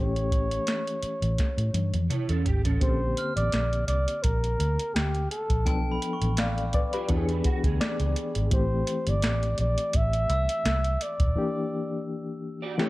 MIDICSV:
0, 0, Header, 1, 8, 480
1, 0, Start_track
1, 0, Tempo, 712589
1, 1898, Time_signature, 4, 2, 24, 8
1, 8685, End_track
2, 0, Start_track
2, 0, Title_t, "Glockenspiel"
2, 0, Program_c, 0, 9
2, 2144, Note_on_c, 0, 89, 54
2, 3119, Note_off_c, 0, 89, 0
2, 3813, Note_on_c, 0, 79, 67
2, 3985, Note_on_c, 0, 83, 53
2, 4130, Note_on_c, 0, 85, 49
2, 4793, Note_off_c, 0, 79, 0
2, 4937, Note_off_c, 0, 83, 0
2, 5071, Note_off_c, 0, 85, 0
2, 6935, Note_on_c, 0, 88, 51
2, 7867, Note_off_c, 0, 88, 0
2, 8685, End_track
3, 0, Start_track
3, 0, Title_t, "Flugelhorn"
3, 0, Program_c, 1, 56
3, 0, Note_on_c, 1, 73, 84
3, 1392, Note_off_c, 1, 73, 0
3, 1899, Note_on_c, 1, 72, 92
3, 2242, Note_off_c, 1, 72, 0
3, 2266, Note_on_c, 1, 74, 92
3, 2593, Note_off_c, 1, 74, 0
3, 2609, Note_on_c, 1, 74, 86
3, 2849, Note_on_c, 1, 70, 82
3, 2859, Note_off_c, 1, 74, 0
3, 3332, Note_on_c, 1, 67, 78
3, 3342, Note_off_c, 1, 70, 0
3, 3575, Note_off_c, 1, 67, 0
3, 3578, Note_on_c, 1, 69, 78
3, 4031, Note_off_c, 1, 69, 0
3, 5748, Note_on_c, 1, 72, 84
3, 6123, Note_on_c, 1, 74, 88
3, 6133, Note_off_c, 1, 72, 0
3, 6465, Note_off_c, 1, 74, 0
3, 6469, Note_on_c, 1, 74, 91
3, 6713, Note_on_c, 1, 76, 108
3, 6723, Note_off_c, 1, 74, 0
3, 7426, Note_on_c, 1, 74, 91
3, 7436, Note_off_c, 1, 76, 0
3, 8140, Note_off_c, 1, 74, 0
3, 8685, End_track
4, 0, Start_track
4, 0, Title_t, "Clean electric guitar"
4, 0, Program_c, 2, 27
4, 1415, Note_on_c, 2, 73, 53
4, 1420, Note_on_c, 2, 64, 48
4, 1539, Note_off_c, 2, 73, 0
4, 1542, Note_off_c, 2, 64, 0
4, 1545, Note_on_c, 2, 69, 62
4, 1549, Note_on_c, 2, 61, 54
4, 1650, Note_off_c, 2, 69, 0
4, 1653, Note_off_c, 2, 61, 0
4, 1653, Note_on_c, 2, 67, 65
4, 1778, Note_off_c, 2, 67, 0
4, 1783, Note_on_c, 2, 69, 53
4, 1788, Note_on_c, 2, 61, 50
4, 2013, Note_off_c, 2, 69, 0
4, 2016, Note_off_c, 2, 61, 0
4, 4668, Note_on_c, 2, 74, 62
4, 4672, Note_on_c, 2, 65, 52
4, 4773, Note_off_c, 2, 74, 0
4, 4775, Note_off_c, 2, 65, 0
4, 4777, Note_on_c, 2, 73, 66
4, 4781, Note_on_c, 2, 64, 57
4, 4900, Note_off_c, 2, 73, 0
4, 4903, Note_off_c, 2, 64, 0
4, 4907, Note_on_c, 2, 71, 63
4, 4912, Note_on_c, 2, 62, 51
4, 5012, Note_off_c, 2, 71, 0
4, 5014, Note_off_c, 2, 62, 0
4, 5019, Note_on_c, 2, 66, 68
4, 5141, Note_off_c, 2, 66, 0
4, 5151, Note_on_c, 2, 68, 62
4, 5155, Note_on_c, 2, 59, 54
4, 5712, Note_off_c, 2, 68, 0
4, 5714, Note_off_c, 2, 59, 0
4, 8503, Note_on_c, 2, 74, 69
4, 8507, Note_on_c, 2, 66, 60
4, 8608, Note_off_c, 2, 74, 0
4, 8610, Note_off_c, 2, 66, 0
4, 8616, Note_on_c, 2, 73, 70
4, 8620, Note_on_c, 2, 64, 62
4, 8685, Note_off_c, 2, 64, 0
4, 8685, Note_off_c, 2, 73, 0
4, 8685, End_track
5, 0, Start_track
5, 0, Title_t, "Reed electric piano"
5, 0, Program_c, 3, 4
5, 0, Note_on_c, 3, 52, 57
5, 0, Note_on_c, 3, 57, 49
5, 0, Note_on_c, 3, 67, 62
5, 17, Note_on_c, 3, 61, 53
5, 95, Control_c, 3, 64, 127
5, 1864, Note_off_c, 3, 52, 0
5, 1868, Note_off_c, 3, 57, 0
5, 1873, Note_off_c, 3, 67, 0
5, 1886, Note_on_c, 3, 49, 45
5, 1892, Note_off_c, 3, 61, 0
5, 1892, Note_on_c, 3, 58, 50
5, 1897, Note_on_c, 3, 60, 51
5, 1901, Note_on_c, 3, 67, 57
5, 1906, Control_c, 3, 64, 0
5, 1929, Note_on_c, 3, 50, 50
5, 1939, Note_off_c, 3, 49, 0
5, 2019, Control_c, 3, 64, 127
5, 3788, Note_off_c, 3, 58, 0
5, 3791, Note_off_c, 3, 60, 0
5, 3793, Note_off_c, 3, 67, 0
5, 3807, Note_off_c, 3, 50, 0
5, 3809, Note_on_c, 3, 53, 55
5, 3814, Note_on_c, 3, 59, 52
5, 3817, Note_on_c, 3, 62, 50
5, 3824, Note_on_c, 3, 69, 66
5, 3828, Control_c, 3, 64, 0
5, 3964, Control_c, 3, 64, 127
5, 4291, Note_off_c, 3, 69, 0
5, 4301, Note_on_c, 3, 77, 56
5, 4304, Note_on_c, 3, 74, 48
5, 4527, Note_off_c, 3, 77, 0
5, 4529, Note_off_c, 3, 74, 0
5, 4542, Note_on_c, 3, 74, 65
5, 4548, Note_on_c, 3, 71, 52
5, 4663, Note_off_c, 3, 74, 0
5, 4665, Note_off_c, 3, 71, 0
5, 4673, Note_on_c, 3, 71, 55
5, 4676, Note_on_c, 3, 67, 49
5, 4754, Note_off_c, 3, 53, 0
5, 4756, Note_off_c, 3, 59, 0
5, 4758, Note_off_c, 3, 62, 0
5, 4772, Note_on_c, 3, 52, 66
5, 4777, Note_on_c, 3, 59, 61
5, 4783, Note_on_c, 3, 62, 63
5, 4787, Control_c, 3, 64, 0
5, 4789, Note_on_c, 3, 66, 53
5, 4831, Note_off_c, 3, 66, 0
5, 4832, Note_on_c, 3, 68, 77
5, 4890, Control_c, 3, 64, 127
5, 4898, Note_off_c, 3, 71, 0
5, 4900, Note_off_c, 3, 67, 0
5, 5259, Note_on_c, 3, 74, 69
5, 5711, Note_off_c, 3, 74, 0
5, 5715, Note_off_c, 3, 52, 0
5, 5718, Note_off_c, 3, 59, 0
5, 5721, Note_off_c, 3, 62, 0
5, 5731, Note_on_c, 3, 52, 60
5, 5736, Note_on_c, 3, 57, 53
5, 5743, Note_on_c, 3, 60, 55
5, 5744, Control_c, 3, 64, 0
5, 5746, Note_off_c, 3, 68, 0
5, 5748, Note_on_c, 3, 67, 64
5, 5856, Control_c, 3, 64, 127
5, 7625, Note_off_c, 3, 52, 0
5, 7628, Note_off_c, 3, 57, 0
5, 7631, Note_off_c, 3, 60, 0
5, 7634, Note_off_c, 3, 67, 0
5, 7650, Note_on_c, 3, 52, 59
5, 7655, Note_on_c, 3, 58, 55
5, 7661, Note_on_c, 3, 62, 55
5, 7663, Control_c, 3, 64, 0
5, 7668, Note_on_c, 3, 67, 66
5, 7798, Control_c, 3, 64, 127
5, 8592, Note_off_c, 3, 52, 0
5, 8595, Note_off_c, 3, 58, 0
5, 8598, Note_off_c, 3, 62, 0
5, 8601, Note_off_c, 3, 67, 0
5, 8606, Note_on_c, 3, 52, 63
5, 8612, Note_on_c, 3, 57, 61
5, 8617, Note_on_c, 3, 60, 52
5, 8621, Note_on_c, 3, 67, 73
5, 8622, Control_c, 3, 64, 0
5, 8660, Note_on_c, 3, 61, 62
5, 8663, Note_off_c, 3, 60, 0
5, 8685, Note_off_c, 3, 52, 0
5, 8685, Note_off_c, 3, 57, 0
5, 8685, Note_off_c, 3, 61, 0
5, 8685, Note_off_c, 3, 67, 0
5, 8685, End_track
6, 0, Start_track
6, 0, Title_t, "Fingered electric bass"
6, 0, Program_c, 4, 33
6, 0, Note_on_c, 4, 33, 83
6, 388, Note_off_c, 4, 33, 0
6, 822, Note_on_c, 4, 33, 73
6, 919, Note_off_c, 4, 33, 0
6, 1061, Note_on_c, 4, 45, 83
6, 1158, Note_off_c, 4, 45, 0
6, 1170, Note_on_c, 4, 43, 79
6, 1285, Note_off_c, 4, 43, 0
6, 1305, Note_on_c, 4, 41, 75
6, 1400, Note_off_c, 4, 41, 0
6, 1543, Note_on_c, 4, 40, 77
6, 1640, Note_off_c, 4, 40, 0
6, 1657, Note_on_c, 4, 32, 76
6, 1769, Note_off_c, 4, 32, 0
6, 1784, Note_on_c, 4, 33, 76
6, 1880, Note_off_c, 4, 33, 0
6, 1897, Note_on_c, 4, 34, 85
6, 2104, Note_off_c, 4, 34, 0
6, 2266, Note_on_c, 4, 33, 73
6, 2362, Note_off_c, 4, 33, 0
6, 2377, Note_on_c, 4, 34, 78
6, 2584, Note_off_c, 4, 34, 0
6, 2614, Note_on_c, 4, 36, 73
6, 2727, Note_off_c, 4, 36, 0
6, 2859, Note_on_c, 4, 34, 81
6, 3065, Note_off_c, 4, 34, 0
6, 3096, Note_on_c, 4, 38, 83
6, 3208, Note_off_c, 4, 38, 0
6, 3338, Note_on_c, 4, 38, 78
6, 3544, Note_off_c, 4, 38, 0
6, 3704, Note_on_c, 4, 34, 76
6, 3818, Note_off_c, 4, 34, 0
6, 3818, Note_on_c, 4, 35, 99
6, 4024, Note_off_c, 4, 35, 0
6, 4186, Note_on_c, 4, 33, 79
6, 4599, Note_off_c, 4, 33, 0
6, 4782, Note_on_c, 4, 40, 86
6, 4986, Note_off_c, 4, 40, 0
6, 5146, Note_on_c, 4, 38, 78
6, 5241, Note_off_c, 4, 38, 0
6, 5387, Note_on_c, 4, 37, 82
6, 5482, Note_off_c, 4, 37, 0
6, 5629, Note_on_c, 4, 32, 84
6, 5723, Note_off_c, 4, 32, 0
6, 5739, Note_on_c, 4, 33, 82
6, 5944, Note_off_c, 4, 33, 0
6, 6110, Note_on_c, 4, 31, 84
6, 6203, Note_off_c, 4, 31, 0
6, 6219, Note_on_c, 4, 33, 82
6, 6424, Note_off_c, 4, 33, 0
6, 6460, Note_on_c, 4, 34, 79
6, 6570, Note_off_c, 4, 34, 0
6, 6701, Note_on_c, 4, 33, 85
6, 6905, Note_off_c, 4, 33, 0
6, 6936, Note_on_c, 4, 36, 94
6, 7047, Note_off_c, 4, 36, 0
6, 7175, Note_on_c, 4, 36, 86
6, 7381, Note_off_c, 4, 36, 0
6, 7544, Note_on_c, 4, 27, 86
6, 7639, Note_off_c, 4, 27, 0
6, 8685, End_track
7, 0, Start_track
7, 0, Title_t, "Muted fingered electric bass strokes"
7, 692, Note_on_c, 9, 29, 38
7, 759, Note_off_c, 9, 29, 0
7, 5262, Note_on_c, 9, 29, 39
7, 5330, Note_off_c, 9, 29, 0
7, 8685, End_track
8, 0, Start_track
8, 0, Title_t, "Drums"
8, 110, Note_on_c, 9, 42, 40
8, 177, Note_off_c, 9, 42, 0
8, 214, Note_on_c, 9, 36, 80
8, 217, Note_on_c, 9, 42, 77
8, 281, Note_off_c, 9, 36, 0
8, 284, Note_off_c, 9, 42, 0
8, 346, Note_on_c, 9, 42, 47
8, 413, Note_off_c, 9, 42, 0
8, 451, Note_on_c, 9, 42, 74
8, 459, Note_on_c, 9, 38, 98
8, 518, Note_off_c, 9, 42, 0
8, 527, Note_off_c, 9, 38, 0
8, 589, Note_on_c, 9, 42, 39
8, 656, Note_off_c, 9, 42, 0
8, 691, Note_on_c, 9, 42, 68
8, 758, Note_off_c, 9, 42, 0
8, 824, Note_on_c, 9, 42, 44
8, 892, Note_off_c, 9, 42, 0
8, 933, Note_on_c, 9, 42, 74
8, 937, Note_on_c, 9, 36, 82
8, 941, Note_on_c, 9, 38, 47
8, 1000, Note_off_c, 9, 42, 0
8, 1004, Note_off_c, 9, 36, 0
8, 1009, Note_off_c, 9, 38, 0
8, 1066, Note_on_c, 9, 42, 49
8, 1133, Note_off_c, 9, 42, 0
8, 1174, Note_on_c, 9, 42, 60
8, 1175, Note_on_c, 9, 48, 63
8, 1242, Note_off_c, 9, 42, 0
8, 1242, Note_off_c, 9, 48, 0
8, 1304, Note_on_c, 9, 42, 51
8, 1304, Note_on_c, 9, 48, 53
8, 1371, Note_off_c, 9, 42, 0
8, 1371, Note_off_c, 9, 48, 0
8, 1415, Note_on_c, 9, 47, 70
8, 1418, Note_on_c, 9, 42, 68
8, 1482, Note_off_c, 9, 47, 0
8, 1485, Note_off_c, 9, 42, 0
8, 1543, Note_on_c, 9, 42, 45
8, 1610, Note_off_c, 9, 42, 0
8, 1655, Note_on_c, 9, 43, 78
8, 1656, Note_on_c, 9, 42, 57
8, 1723, Note_off_c, 9, 42, 0
8, 1723, Note_off_c, 9, 43, 0
8, 1785, Note_on_c, 9, 42, 43
8, 1787, Note_on_c, 9, 43, 73
8, 1853, Note_off_c, 9, 42, 0
8, 1855, Note_off_c, 9, 43, 0
8, 1895, Note_on_c, 9, 36, 91
8, 1896, Note_on_c, 9, 42, 88
8, 1963, Note_off_c, 9, 36, 0
8, 1963, Note_off_c, 9, 42, 0
8, 2137, Note_on_c, 9, 42, 75
8, 2204, Note_off_c, 9, 42, 0
8, 2268, Note_on_c, 9, 42, 51
8, 2336, Note_off_c, 9, 42, 0
8, 2374, Note_on_c, 9, 42, 74
8, 2382, Note_on_c, 9, 38, 98
8, 2442, Note_off_c, 9, 42, 0
8, 2450, Note_off_c, 9, 38, 0
8, 2511, Note_on_c, 9, 42, 29
8, 2579, Note_off_c, 9, 42, 0
8, 2614, Note_on_c, 9, 42, 71
8, 2681, Note_off_c, 9, 42, 0
8, 2747, Note_on_c, 9, 42, 49
8, 2815, Note_off_c, 9, 42, 0
8, 2853, Note_on_c, 9, 42, 80
8, 2858, Note_on_c, 9, 36, 77
8, 2921, Note_off_c, 9, 42, 0
8, 2925, Note_off_c, 9, 36, 0
8, 2989, Note_on_c, 9, 42, 36
8, 3057, Note_off_c, 9, 42, 0
8, 3099, Note_on_c, 9, 42, 60
8, 3166, Note_off_c, 9, 42, 0
8, 3230, Note_on_c, 9, 42, 48
8, 3297, Note_off_c, 9, 42, 0
8, 3341, Note_on_c, 9, 42, 71
8, 3343, Note_on_c, 9, 38, 106
8, 3409, Note_off_c, 9, 42, 0
8, 3410, Note_off_c, 9, 38, 0
8, 3466, Note_on_c, 9, 42, 30
8, 3533, Note_off_c, 9, 42, 0
8, 3579, Note_on_c, 9, 42, 63
8, 3646, Note_off_c, 9, 42, 0
8, 3704, Note_on_c, 9, 36, 74
8, 3704, Note_on_c, 9, 42, 44
8, 3771, Note_off_c, 9, 36, 0
8, 3772, Note_off_c, 9, 42, 0
8, 3816, Note_on_c, 9, 42, 79
8, 3817, Note_on_c, 9, 36, 87
8, 3884, Note_off_c, 9, 36, 0
8, 3884, Note_off_c, 9, 42, 0
8, 4056, Note_on_c, 9, 42, 74
8, 4124, Note_off_c, 9, 42, 0
8, 4187, Note_on_c, 9, 42, 49
8, 4254, Note_off_c, 9, 42, 0
8, 4291, Note_on_c, 9, 42, 80
8, 4300, Note_on_c, 9, 38, 105
8, 4359, Note_off_c, 9, 42, 0
8, 4367, Note_off_c, 9, 38, 0
8, 4431, Note_on_c, 9, 42, 32
8, 4498, Note_off_c, 9, 42, 0
8, 4533, Note_on_c, 9, 42, 68
8, 4540, Note_on_c, 9, 36, 81
8, 4601, Note_off_c, 9, 42, 0
8, 4608, Note_off_c, 9, 36, 0
8, 4668, Note_on_c, 9, 42, 48
8, 4735, Note_off_c, 9, 42, 0
8, 4773, Note_on_c, 9, 42, 77
8, 4780, Note_on_c, 9, 36, 75
8, 4841, Note_off_c, 9, 42, 0
8, 4847, Note_off_c, 9, 36, 0
8, 4908, Note_on_c, 9, 42, 34
8, 4976, Note_off_c, 9, 42, 0
8, 5014, Note_on_c, 9, 42, 60
8, 5018, Note_on_c, 9, 36, 82
8, 5082, Note_off_c, 9, 42, 0
8, 5085, Note_off_c, 9, 36, 0
8, 5145, Note_on_c, 9, 36, 81
8, 5147, Note_on_c, 9, 42, 55
8, 5212, Note_off_c, 9, 36, 0
8, 5214, Note_off_c, 9, 42, 0
8, 5261, Note_on_c, 9, 42, 71
8, 5262, Note_on_c, 9, 38, 107
8, 5328, Note_off_c, 9, 42, 0
8, 5330, Note_off_c, 9, 38, 0
8, 5386, Note_on_c, 9, 42, 32
8, 5454, Note_off_c, 9, 42, 0
8, 5498, Note_on_c, 9, 42, 64
8, 5566, Note_off_c, 9, 42, 0
8, 5626, Note_on_c, 9, 42, 46
8, 5693, Note_off_c, 9, 42, 0
8, 5735, Note_on_c, 9, 42, 88
8, 5738, Note_on_c, 9, 36, 92
8, 5802, Note_off_c, 9, 42, 0
8, 5805, Note_off_c, 9, 36, 0
8, 5976, Note_on_c, 9, 42, 75
8, 6043, Note_off_c, 9, 42, 0
8, 6107, Note_on_c, 9, 42, 51
8, 6174, Note_off_c, 9, 42, 0
8, 6213, Note_on_c, 9, 42, 79
8, 6221, Note_on_c, 9, 38, 108
8, 6281, Note_off_c, 9, 42, 0
8, 6289, Note_off_c, 9, 38, 0
8, 6350, Note_on_c, 9, 42, 32
8, 6418, Note_off_c, 9, 42, 0
8, 6452, Note_on_c, 9, 42, 73
8, 6519, Note_off_c, 9, 42, 0
8, 6586, Note_on_c, 9, 42, 51
8, 6653, Note_off_c, 9, 42, 0
8, 6691, Note_on_c, 9, 42, 84
8, 6698, Note_on_c, 9, 36, 83
8, 6759, Note_off_c, 9, 42, 0
8, 6766, Note_off_c, 9, 36, 0
8, 6826, Note_on_c, 9, 42, 36
8, 6893, Note_off_c, 9, 42, 0
8, 6936, Note_on_c, 9, 42, 67
8, 7003, Note_off_c, 9, 42, 0
8, 7066, Note_on_c, 9, 42, 52
8, 7134, Note_off_c, 9, 42, 0
8, 7177, Note_on_c, 9, 42, 73
8, 7178, Note_on_c, 9, 38, 105
8, 7245, Note_off_c, 9, 42, 0
8, 7246, Note_off_c, 9, 38, 0
8, 7305, Note_on_c, 9, 42, 31
8, 7372, Note_off_c, 9, 42, 0
8, 7416, Note_on_c, 9, 42, 65
8, 7483, Note_off_c, 9, 42, 0
8, 7543, Note_on_c, 9, 36, 77
8, 7543, Note_on_c, 9, 42, 45
8, 7610, Note_off_c, 9, 36, 0
8, 7610, Note_off_c, 9, 42, 0
8, 8618, Note_on_c, 9, 38, 55
8, 8685, Note_off_c, 9, 38, 0
8, 8685, End_track
0, 0, End_of_file